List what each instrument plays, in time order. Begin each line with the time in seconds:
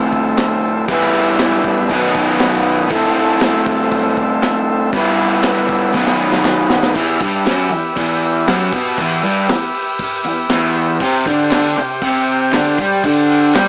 Already playing: overdriven electric guitar A2 A3 C4 E4 A4, transistor combo organ A4 C5 E5
0.13 kick
0.37 snare, clap, crash
0.88 overdriven electric guitar G3 B3 E4 B4, transistor combo organ G4 B4 E5, kick, crash
1.39 snare, clap, crash
1.64 kick
1.89 overdriven electric guitar B2 D#3 F#3 B3 D#4 B4, transistor combo organ F#4 B4 D#5, kick, crash
2.15 kick
2.40 snare, clap, crash
2.89 overdriven electric guitar A2 A3 C4 E4 A4, transistor combo organ A4, kick, crash
2.93 transistor combo organ C5 E5
3.41 snare, clap, crash
3.66 kick
3.92 kick, crash
4.17 kick
4.42 snare, clap, crash
4.93 overdriven electric guitar G3 B3 E4 B4, transistor combo organ G4 B4 E5, kick, crash
5.43 snare, clap, crash
5.69 kick
5.92 overdriven electric guitar B2 D#3 F#3 B3, transistor combo organ F#4 B4 D#5, kick, snare
5.96 overdriven electric guitar D#4 B4
6.07 snare
6.32 snare
6.45 snare, clap
6.70 snare
6.83 snare
6.95 overdriven electric guitar E2 E3, transistor combo organ G4 B4 E5, kick, crash
7.21 overdriven electric guitar G2 G3, kick, crash
7.45 overdriven electric guitar F#2 F#3, snare, crash
7.71 overdriven electric guitar E2, crash
7.96 overdriven electric guitar E2 E3, kick, crash
8.22 crash
8.47 overdriven electric guitar F#2 F#3, snare, crash
8.72 overdriven electric guitar B2 B3, kick, crash
8.97 overdriven electric guitar E2 E3, kick, crash
9.23 overdriven electric guitar G2 G3, crash
9.48 overdriven electric guitar E2, snare, crash
9.74 crash
9.99 kick, crash
10.25 overdriven electric guitar E2, crash
10.49 overdriven electric guitar E2 E3, snare, crash
10.75 crash
11.00 overdriven electric guitar C3 C4, transistor combo organ G4 C5 G5, kick, crash
11.26 overdriven electric guitar D3 D4, kick, crash
11.51 overdriven electric guitar D3 D4, snare, clap, crash
11.77 overdriven electric guitar C3, crash
12.02 overdriven electric guitar C3 C4, kick, crash
12.28 crash
12.52 overdriven electric guitar D3 D4, snare, clap, crash
12.78 overdriven electric guitar G3 G4, kick, crash
13.04 overdriven electric guitar D3 D4, kick, crash
13.29 crash
13.54 overdriven electric guitar G3 G4, snare, clap, crash